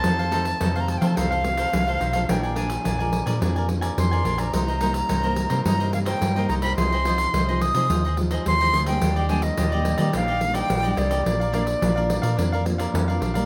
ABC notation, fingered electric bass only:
X:1
M:4/4
L:1/16
Q:1/4=107
K:Bbmix
V:1 name="Fingered electric bass" clef=bass
F,,4 F,,3 F, C,,4 C,,2 _C,,2 | B,,,4 B,,,3 B,, F,,4 F,,2 B,,,2 | C,,4 C,,3 C, G,,4 G,,2 C,,2 | C,,4 C,,3 C, E,,4 E,,2 D,,2 |
E,,4 E,,3 E, B,,,4 B,,,2 C,,2 | B,,,4 B,,,3 B,, F,,4 F,,2 B,,,2 |]